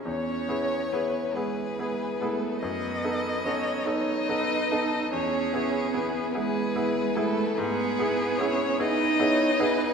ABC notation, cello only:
X:1
M:6/8
L:1/8
Q:3/8=49
K:E
V:1 name="Cello"
C2 B, G,2 A, | B,2 C D3 | C2 B, G,2 A, | B,2 C D3 |]